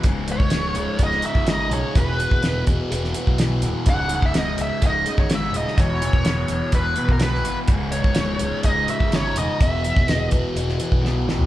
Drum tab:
HH |x-x-x-x-x-x-x-x-|x-x-x-x-x-x-x-x-|x-x-x-x-x-x-x-x-|x-x-x-x-x-x-x-x-|
SD |----o----o--o---|----o----o--o---|----o-------o--o|----o-------oo--|
FT |----------------|----------------|----------------|----------------|
BD |o--o----o--o----|o--o--o----o----|o--o----o--o----|o--o----o--o----|

HH |x-x-x-x-x-x-x-x-|x-x-x-x-x-x-----|
SD |----o-------o---|----o----o--o-o-|
FT |----------------|---------------o|
BD |o--o----o--o----|o--o--o----o----|